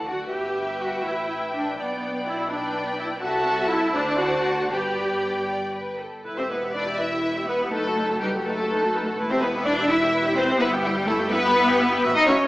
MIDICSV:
0, 0, Header, 1, 6, 480
1, 0, Start_track
1, 0, Key_signature, 1, "major"
1, 0, Tempo, 485044
1, 317, Time_signature, 6, 3, 24, 8
1, 3670, Tempo, 506329
1, 6081, Key_signature, 1, "minor"
1, 6550, Tempo, 485437
1, 8950, Tempo, 476569
1, 12276, End_track
2, 0, Start_track
2, 0, Title_t, "Violin section"
2, 0, Program_c, 0, 48
2, 60, Note_on_c, 0, 74, 32
2, 61, Note_on_c, 0, 66, 34
2, 311, Note_off_c, 0, 66, 0
2, 311, Note_off_c, 0, 74, 0
2, 315, Note_on_c, 0, 71, 44
2, 315, Note_on_c, 0, 76, 48
2, 1723, Note_off_c, 0, 71, 0
2, 1723, Note_off_c, 0, 76, 0
2, 1766, Note_on_c, 0, 74, 46
2, 1769, Note_off_c, 0, 74, 0
2, 1769, Note_on_c, 0, 74, 47
2, 2471, Note_off_c, 0, 74, 0
2, 2483, Note_on_c, 0, 74, 55
2, 2485, Note_on_c, 0, 71, 51
2, 3173, Note_off_c, 0, 74, 0
2, 3185, Note_on_c, 0, 69, 66
2, 3186, Note_on_c, 0, 76, 66
2, 3188, Note_off_c, 0, 71, 0
2, 3868, Note_off_c, 0, 69, 0
2, 3868, Note_off_c, 0, 76, 0
2, 3904, Note_on_c, 0, 74, 62
2, 3910, Note_on_c, 0, 72, 64
2, 4614, Note_off_c, 0, 72, 0
2, 4625, Note_off_c, 0, 74, 0
2, 4631, Note_on_c, 0, 71, 51
2, 4636, Note_on_c, 0, 74, 50
2, 5299, Note_off_c, 0, 74, 0
2, 5310, Note_off_c, 0, 71, 0
2, 5366, Note_on_c, 0, 74, 51
2, 5586, Note_off_c, 0, 74, 0
2, 5601, Note_on_c, 0, 71, 49
2, 5837, Note_off_c, 0, 71, 0
2, 5837, Note_on_c, 0, 69, 44
2, 6080, Note_off_c, 0, 69, 0
2, 6197, Note_on_c, 0, 72, 61
2, 6245, Note_off_c, 0, 72, 0
2, 6315, Note_on_c, 0, 71, 59
2, 6544, Note_on_c, 0, 74, 72
2, 6545, Note_off_c, 0, 71, 0
2, 6784, Note_on_c, 0, 76, 65
2, 6788, Note_off_c, 0, 74, 0
2, 7269, Note_off_c, 0, 76, 0
2, 7275, Note_on_c, 0, 71, 74
2, 7510, Note_off_c, 0, 71, 0
2, 7519, Note_on_c, 0, 69, 79
2, 7988, Note_off_c, 0, 69, 0
2, 7988, Note_on_c, 0, 67, 70
2, 8232, Note_off_c, 0, 67, 0
2, 8232, Note_on_c, 0, 69, 75
2, 8949, Note_off_c, 0, 69, 0
2, 9073, Note_on_c, 0, 72, 73
2, 9121, Note_off_c, 0, 72, 0
2, 9204, Note_on_c, 0, 71, 66
2, 9284, Note_off_c, 0, 71, 0
2, 9432, Note_on_c, 0, 74, 83
2, 9665, Note_off_c, 0, 74, 0
2, 9685, Note_on_c, 0, 76, 75
2, 10147, Note_off_c, 0, 76, 0
2, 10156, Note_on_c, 0, 72, 91
2, 10389, Note_off_c, 0, 72, 0
2, 10398, Note_on_c, 0, 71, 81
2, 10479, Note_off_c, 0, 71, 0
2, 10646, Note_on_c, 0, 67, 81
2, 10871, Note_on_c, 0, 69, 86
2, 10875, Note_off_c, 0, 67, 0
2, 11105, Note_on_c, 0, 71, 100
2, 11113, Note_off_c, 0, 69, 0
2, 11816, Note_off_c, 0, 71, 0
2, 11943, Note_on_c, 0, 75, 92
2, 12056, Note_on_c, 0, 73, 81
2, 12059, Note_off_c, 0, 75, 0
2, 12276, Note_off_c, 0, 73, 0
2, 12276, End_track
3, 0, Start_track
3, 0, Title_t, "Violin section"
3, 0, Program_c, 1, 48
3, 68, Note_on_c, 1, 78, 32
3, 299, Note_on_c, 1, 79, 50
3, 315, Note_off_c, 1, 78, 0
3, 2429, Note_off_c, 1, 79, 0
3, 2488, Note_on_c, 1, 79, 55
3, 3176, Note_off_c, 1, 79, 0
3, 3192, Note_on_c, 1, 81, 67
3, 3872, Note_off_c, 1, 81, 0
3, 3908, Note_on_c, 1, 81, 63
3, 4613, Note_off_c, 1, 81, 0
3, 4624, Note_on_c, 1, 79, 57
3, 5883, Note_off_c, 1, 79, 0
3, 6190, Note_on_c, 1, 72, 66
3, 6304, Note_off_c, 1, 72, 0
3, 6313, Note_on_c, 1, 71, 58
3, 6389, Note_off_c, 1, 71, 0
3, 6552, Note_on_c, 1, 74, 73
3, 6787, Note_off_c, 1, 74, 0
3, 6791, Note_on_c, 1, 76, 65
3, 7272, Note_off_c, 1, 76, 0
3, 7280, Note_on_c, 1, 71, 66
3, 7359, Note_off_c, 1, 71, 0
3, 7511, Note_on_c, 1, 69, 84
3, 7984, Note_off_c, 1, 69, 0
3, 8003, Note_on_c, 1, 67, 75
3, 8082, Note_off_c, 1, 67, 0
3, 8238, Note_on_c, 1, 69, 80
3, 8938, Note_off_c, 1, 69, 0
3, 9080, Note_on_c, 1, 72, 80
3, 9189, Note_off_c, 1, 72, 0
3, 9192, Note_on_c, 1, 71, 75
3, 9432, Note_off_c, 1, 71, 0
3, 9442, Note_on_c, 1, 74, 88
3, 9663, Note_on_c, 1, 76, 81
3, 9675, Note_off_c, 1, 74, 0
3, 10136, Note_off_c, 1, 76, 0
3, 10148, Note_on_c, 1, 72, 90
3, 10228, Note_off_c, 1, 72, 0
3, 10385, Note_on_c, 1, 71, 89
3, 10465, Note_off_c, 1, 71, 0
3, 10636, Note_on_c, 1, 67, 85
3, 10716, Note_off_c, 1, 67, 0
3, 10862, Note_on_c, 1, 69, 90
3, 10942, Note_off_c, 1, 69, 0
3, 11097, Note_on_c, 1, 71, 113
3, 11811, Note_off_c, 1, 71, 0
3, 11941, Note_on_c, 1, 75, 95
3, 12058, Note_off_c, 1, 75, 0
3, 12060, Note_on_c, 1, 73, 76
3, 12141, Note_off_c, 1, 73, 0
3, 12276, End_track
4, 0, Start_track
4, 0, Title_t, "Viola section"
4, 0, Program_c, 2, 48
4, 77, Note_on_c, 2, 66, 58
4, 302, Note_off_c, 2, 66, 0
4, 310, Note_on_c, 2, 67, 67
4, 798, Note_off_c, 2, 67, 0
4, 799, Note_on_c, 2, 66, 66
4, 1034, Note_on_c, 2, 64, 59
4, 1041, Note_off_c, 2, 66, 0
4, 1521, Note_off_c, 2, 64, 0
4, 1521, Note_on_c, 2, 62, 59
4, 1755, Note_on_c, 2, 59, 71
4, 1757, Note_off_c, 2, 62, 0
4, 2227, Note_off_c, 2, 59, 0
4, 2246, Note_on_c, 2, 64, 74
4, 2476, Note_on_c, 2, 62, 65
4, 2481, Note_off_c, 2, 64, 0
4, 2948, Note_off_c, 2, 62, 0
4, 2950, Note_on_c, 2, 64, 77
4, 3029, Note_off_c, 2, 64, 0
4, 3180, Note_on_c, 2, 66, 85
4, 3657, Note_off_c, 2, 66, 0
4, 3659, Note_on_c, 2, 64, 89
4, 3901, Note_off_c, 2, 64, 0
4, 3906, Note_on_c, 2, 62, 91
4, 4145, Note_off_c, 2, 62, 0
4, 4145, Note_on_c, 2, 66, 86
4, 4623, Note_on_c, 2, 67, 71
4, 4627, Note_off_c, 2, 66, 0
4, 5340, Note_off_c, 2, 67, 0
4, 6078, Note_on_c, 2, 64, 55
4, 6081, Note_on_c, 2, 71, 55
4, 6190, Note_off_c, 2, 64, 0
4, 6191, Note_off_c, 2, 71, 0
4, 6196, Note_on_c, 2, 67, 51
4, 6200, Note_on_c, 2, 76, 51
4, 6313, Note_on_c, 2, 71, 47
4, 6316, Note_off_c, 2, 67, 0
4, 6316, Note_on_c, 2, 64, 46
4, 6318, Note_off_c, 2, 76, 0
4, 6432, Note_off_c, 2, 71, 0
4, 6434, Note_off_c, 2, 64, 0
4, 6434, Note_on_c, 2, 67, 49
4, 6434, Note_on_c, 2, 76, 50
4, 6548, Note_on_c, 2, 64, 47
4, 6548, Note_on_c, 2, 71, 54
4, 6550, Note_off_c, 2, 67, 0
4, 6550, Note_off_c, 2, 76, 0
4, 6661, Note_off_c, 2, 64, 0
4, 6661, Note_off_c, 2, 71, 0
4, 6661, Note_on_c, 2, 67, 51
4, 6665, Note_on_c, 2, 76, 52
4, 6779, Note_on_c, 2, 71, 53
4, 6782, Note_on_c, 2, 64, 52
4, 6786, Note_off_c, 2, 67, 0
4, 6788, Note_off_c, 2, 76, 0
4, 6905, Note_off_c, 2, 71, 0
4, 6906, Note_off_c, 2, 64, 0
4, 6911, Note_on_c, 2, 67, 48
4, 6913, Note_on_c, 2, 76, 48
4, 7027, Note_on_c, 2, 64, 48
4, 7027, Note_on_c, 2, 71, 48
4, 7031, Note_off_c, 2, 67, 0
4, 7032, Note_off_c, 2, 76, 0
4, 7141, Note_off_c, 2, 64, 0
4, 7141, Note_off_c, 2, 71, 0
4, 7148, Note_on_c, 2, 67, 55
4, 7152, Note_on_c, 2, 76, 51
4, 7266, Note_on_c, 2, 71, 52
4, 7268, Note_on_c, 2, 64, 53
4, 7270, Note_off_c, 2, 67, 0
4, 7272, Note_off_c, 2, 76, 0
4, 7390, Note_off_c, 2, 64, 0
4, 7390, Note_off_c, 2, 71, 0
4, 7397, Note_on_c, 2, 67, 58
4, 7400, Note_on_c, 2, 76, 53
4, 7513, Note_on_c, 2, 71, 62
4, 7514, Note_on_c, 2, 63, 58
4, 7515, Note_off_c, 2, 67, 0
4, 7517, Note_off_c, 2, 76, 0
4, 7625, Note_off_c, 2, 71, 0
4, 7626, Note_off_c, 2, 63, 0
4, 7642, Note_on_c, 2, 66, 52
4, 7644, Note_on_c, 2, 69, 52
4, 7759, Note_off_c, 2, 66, 0
4, 7759, Note_off_c, 2, 69, 0
4, 7761, Note_on_c, 2, 71, 49
4, 7766, Note_on_c, 2, 63, 54
4, 7878, Note_off_c, 2, 71, 0
4, 7880, Note_on_c, 2, 66, 52
4, 7881, Note_off_c, 2, 63, 0
4, 7883, Note_on_c, 2, 69, 54
4, 7998, Note_off_c, 2, 66, 0
4, 7999, Note_off_c, 2, 69, 0
4, 8001, Note_on_c, 2, 63, 53
4, 8001, Note_on_c, 2, 71, 57
4, 8110, Note_off_c, 2, 63, 0
4, 8110, Note_off_c, 2, 71, 0
4, 8122, Note_on_c, 2, 66, 52
4, 8124, Note_on_c, 2, 69, 56
4, 8238, Note_off_c, 2, 66, 0
4, 8239, Note_off_c, 2, 69, 0
4, 8245, Note_on_c, 2, 71, 59
4, 8247, Note_on_c, 2, 63, 60
4, 8360, Note_off_c, 2, 71, 0
4, 8361, Note_off_c, 2, 63, 0
4, 8368, Note_on_c, 2, 69, 56
4, 8370, Note_on_c, 2, 66, 51
4, 8481, Note_off_c, 2, 69, 0
4, 8482, Note_off_c, 2, 66, 0
4, 8487, Note_on_c, 2, 63, 54
4, 8488, Note_on_c, 2, 71, 56
4, 8592, Note_off_c, 2, 63, 0
4, 8593, Note_off_c, 2, 71, 0
4, 8603, Note_on_c, 2, 66, 61
4, 8606, Note_on_c, 2, 69, 60
4, 8718, Note_off_c, 2, 66, 0
4, 8719, Note_off_c, 2, 69, 0
4, 8729, Note_on_c, 2, 63, 57
4, 8729, Note_on_c, 2, 71, 55
4, 8836, Note_on_c, 2, 69, 60
4, 8837, Note_on_c, 2, 66, 60
4, 8840, Note_off_c, 2, 63, 0
4, 8840, Note_off_c, 2, 71, 0
4, 8948, Note_on_c, 2, 71, 62
4, 8953, Note_off_c, 2, 66, 0
4, 8953, Note_off_c, 2, 69, 0
4, 8955, Note_on_c, 2, 64, 68
4, 9062, Note_off_c, 2, 71, 0
4, 9066, Note_off_c, 2, 64, 0
4, 9070, Note_on_c, 2, 76, 60
4, 9073, Note_on_c, 2, 67, 62
4, 9192, Note_off_c, 2, 76, 0
4, 9193, Note_off_c, 2, 67, 0
4, 9196, Note_on_c, 2, 64, 59
4, 9199, Note_on_c, 2, 71, 64
4, 9315, Note_off_c, 2, 64, 0
4, 9317, Note_off_c, 2, 71, 0
4, 9329, Note_on_c, 2, 67, 61
4, 9333, Note_on_c, 2, 76, 65
4, 9441, Note_off_c, 2, 67, 0
4, 9443, Note_off_c, 2, 76, 0
4, 9444, Note_on_c, 2, 71, 64
4, 9447, Note_on_c, 2, 64, 61
4, 9550, Note_off_c, 2, 71, 0
4, 9551, Note_off_c, 2, 64, 0
4, 9578, Note_on_c, 2, 76, 60
4, 9580, Note_on_c, 2, 67, 60
4, 9684, Note_off_c, 2, 76, 0
4, 9684, Note_on_c, 2, 71, 72
4, 9685, Note_off_c, 2, 67, 0
4, 9686, Note_on_c, 2, 64, 67
4, 9796, Note_off_c, 2, 71, 0
4, 9797, Note_off_c, 2, 64, 0
4, 9802, Note_on_c, 2, 76, 63
4, 9804, Note_on_c, 2, 67, 61
4, 9915, Note_off_c, 2, 76, 0
4, 9916, Note_off_c, 2, 67, 0
4, 9921, Note_on_c, 2, 71, 64
4, 9923, Note_on_c, 2, 64, 65
4, 10027, Note_off_c, 2, 71, 0
4, 10028, Note_off_c, 2, 64, 0
4, 10035, Note_on_c, 2, 67, 67
4, 10038, Note_on_c, 2, 76, 72
4, 10150, Note_on_c, 2, 71, 68
4, 10152, Note_off_c, 2, 67, 0
4, 10152, Note_on_c, 2, 64, 66
4, 10154, Note_off_c, 2, 76, 0
4, 10270, Note_off_c, 2, 71, 0
4, 10271, Note_off_c, 2, 64, 0
4, 10281, Note_on_c, 2, 76, 66
4, 10283, Note_on_c, 2, 67, 68
4, 10378, Note_off_c, 2, 76, 0
4, 10390, Note_on_c, 2, 76, 75
4, 10394, Note_on_c, 2, 64, 77
4, 10397, Note_off_c, 2, 67, 0
4, 10502, Note_off_c, 2, 76, 0
4, 10504, Note_off_c, 2, 64, 0
4, 10515, Note_on_c, 2, 67, 74
4, 10516, Note_on_c, 2, 79, 68
4, 10633, Note_off_c, 2, 67, 0
4, 10633, Note_off_c, 2, 79, 0
4, 10636, Note_on_c, 2, 76, 71
4, 10641, Note_on_c, 2, 64, 65
4, 10745, Note_on_c, 2, 67, 72
4, 10748, Note_on_c, 2, 79, 70
4, 10754, Note_off_c, 2, 76, 0
4, 10756, Note_off_c, 2, 64, 0
4, 10869, Note_off_c, 2, 67, 0
4, 10869, Note_on_c, 2, 76, 67
4, 10870, Note_off_c, 2, 79, 0
4, 10870, Note_on_c, 2, 64, 72
4, 10983, Note_off_c, 2, 64, 0
4, 10983, Note_off_c, 2, 76, 0
4, 10992, Note_on_c, 2, 79, 72
4, 10993, Note_on_c, 2, 67, 68
4, 11103, Note_on_c, 2, 64, 75
4, 11107, Note_on_c, 2, 76, 74
4, 11113, Note_off_c, 2, 67, 0
4, 11113, Note_off_c, 2, 79, 0
4, 11227, Note_on_c, 2, 79, 68
4, 11228, Note_off_c, 2, 64, 0
4, 11229, Note_on_c, 2, 67, 70
4, 11231, Note_off_c, 2, 76, 0
4, 11344, Note_on_c, 2, 64, 67
4, 11346, Note_on_c, 2, 76, 73
4, 11350, Note_off_c, 2, 79, 0
4, 11351, Note_off_c, 2, 67, 0
4, 11460, Note_off_c, 2, 64, 0
4, 11461, Note_off_c, 2, 76, 0
4, 11468, Note_on_c, 2, 79, 72
4, 11474, Note_on_c, 2, 67, 73
4, 11590, Note_on_c, 2, 76, 72
4, 11591, Note_off_c, 2, 79, 0
4, 11594, Note_off_c, 2, 67, 0
4, 11594, Note_on_c, 2, 64, 72
4, 11712, Note_off_c, 2, 76, 0
4, 11714, Note_off_c, 2, 64, 0
4, 11716, Note_on_c, 2, 67, 75
4, 11722, Note_on_c, 2, 79, 72
4, 11835, Note_off_c, 2, 67, 0
4, 11836, Note_on_c, 2, 66, 81
4, 11836, Note_on_c, 2, 76, 88
4, 11838, Note_off_c, 2, 79, 0
4, 11916, Note_off_c, 2, 66, 0
4, 11917, Note_off_c, 2, 76, 0
4, 12077, Note_on_c, 2, 76, 70
4, 12078, Note_on_c, 2, 66, 77
4, 12157, Note_off_c, 2, 76, 0
4, 12159, Note_off_c, 2, 66, 0
4, 12276, End_track
5, 0, Start_track
5, 0, Title_t, "Cello section"
5, 0, Program_c, 3, 48
5, 72, Note_on_c, 3, 50, 41
5, 317, Note_off_c, 3, 50, 0
5, 320, Note_on_c, 3, 43, 47
5, 1004, Note_off_c, 3, 43, 0
5, 1043, Note_on_c, 3, 45, 41
5, 1761, Note_on_c, 3, 47, 50
5, 1764, Note_off_c, 3, 45, 0
5, 3180, Note_on_c, 3, 48, 68
5, 3183, Note_off_c, 3, 47, 0
5, 3866, Note_off_c, 3, 48, 0
5, 3905, Note_on_c, 3, 50, 60
5, 4612, Note_off_c, 3, 50, 0
5, 4628, Note_on_c, 3, 43, 55
5, 5885, Note_off_c, 3, 43, 0
5, 6203, Note_on_c, 3, 60, 69
5, 6250, Note_off_c, 3, 60, 0
5, 6319, Note_on_c, 3, 59, 68
5, 6547, Note_off_c, 3, 59, 0
5, 6550, Note_on_c, 3, 62, 85
5, 6629, Note_off_c, 3, 62, 0
5, 6794, Note_on_c, 3, 64, 65
5, 7264, Note_off_c, 3, 64, 0
5, 7268, Note_on_c, 3, 59, 82
5, 7506, Note_off_c, 3, 59, 0
5, 7506, Note_on_c, 3, 57, 85
5, 7989, Note_on_c, 3, 55, 91
5, 7991, Note_off_c, 3, 57, 0
5, 8069, Note_off_c, 3, 55, 0
5, 8229, Note_on_c, 3, 57, 83
5, 8934, Note_off_c, 3, 57, 0
5, 9075, Note_on_c, 3, 60, 86
5, 9186, Note_off_c, 3, 60, 0
5, 9195, Note_on_c, 3, 59, 94
5, 9434, Note_off_c, 3, 59, 0
5, 9435, Note_on_c, 3, 62, 112
5, 9671, Note_on_c, 3, 64, 93
5, 9672, Note_off_c, 3, 62, 0
5, 10144, Note_on_c, 3, 60, 101
5, 10150, Note_off_c, 3, 64, 0
5, 10384, Note_on_c, 3, 59, 94
5, 10388, Note_off_c, 3, 60, 0
5, 10618, Note_on_c, 3, 55, 107
5, 10628, Note_off_c, 3, 59, 0
5, 10853, Note_on_c, 3, 57, 118
5, 10865, Note_off_c, 3, 55, 0
5, 11104, Note_off_c, 3, 57, 0
5, 11105, Note_on_c, 3, 59, 118
5, 11830, Note_off_c, 3, 59, 0
5, 11948, Note_on_c, 3, 63, 111
5, 12061, Note_off_c, 3, 63, 0
5, 12070, Note_on_c, 3, 61, 104
5, 12276, Note_off_c, 3, 61, 0
5, 12276, End_track
6, 0, Start_track
6, 0, Title_t, "Double bass section"
6, 0, Program_c, 4, 48
6, 0, Note_on_c, 4, 38, 55
6, 117, Note_off_c, 4, 38, 0
6, 317, Note_on_c, 4, 31, 49
6, 1003, Note_off_c, 4, 31, 0
6, 1036, Note_on_c, 4, 33, 44
6, 1757, Note_on_c, 4, 35, 54
6, 1761, Note_off_c, 4, 33, 0
6, 3181, Note_off_c, 4, 35, 0
6, 3184, Note_on_c, 4, 36, 69
6, 3868, Note_off_c, 4, 36, 0
6, 3903, Note_on_c, 4, 38, 58
6, 4611, Note_off_c, 4, 38, 0
6, 4621, Note_on_c, 4, 31, 58
6, 5882, Note_off_c, 4, 31, 0
6, 6075, Note_on_c, 4, 28, 65
6, 7470, Note_off_c, 4, 28, 0
6, 7506, Note_on_c, 4, 30, 72
6, 8918, Note_off_c, 4, 30, 0
6, 8943, Note_on_c, 4, 28, 80
6, 10358, Note_off_c, 4, 28, 0
6, 10385, Note_on_c, 4, 31, 88
6, 11802, Note_off_c, 4, 31, 0
6, 11832, Note_on_c, 4, 33, 95
6, 11913, Note_off_c, 4, 33, 0
6, 12067, Note_on_c, 4, 33, 82
6, 12147, Note_off_c, 4, 33, 0
6, 12276, End_track
0, 0, End_of_file